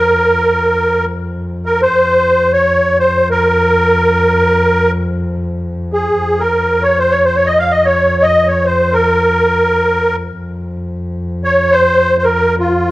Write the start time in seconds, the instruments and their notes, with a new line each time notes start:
Already playing: double bass F2, accordion A#4
1.66 accordion A#4
1.82 accordion C5
1.92 double bass F2
2.53 accordion C#5
2.99 accordion C5
3.31 accordion A#4
5.93 accordion G#4
6.14 double bass F2
6.40 accordion A#4
6.83 accordion C#5
6.99 accordion C5
7.11 accordion C#5
7.25 accordion C5
7.36 accordion C#5
7.46 accordion D#5
7.59 accordion F5
7.71 accordion D#5
7.85 accordion C#5
8.22 accordion D#5
8.47 accordion C#5
8.66 accordion C5
8.93 accordion A#4
10.37 double bass F2
11.44 accordion C#5
11.72 accordion C5
12.18 accordion C5
12.24 accordion A#4
12.59 accordion F4